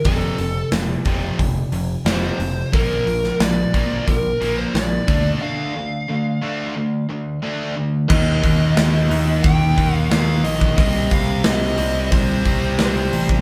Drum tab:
CC |----------------|----------------|----------------|x---------------|
HH |o-o-o-o-o-o-o-o-|o-o-o-o-o-o-o-o-|----------------|--o-o-o-o-o-o-o-|
SD |----o-------o---|---oo-------o---|----------------|----o-------o---|
BD |o-----o-o-------|o-----o-o-----o-|----------------|o-o-----o-o----o|

CC |----------------|
HH |o-o-o-o-o-o-o-o-|
SD |----o-------o---|
BD |o-o-----o-o----o|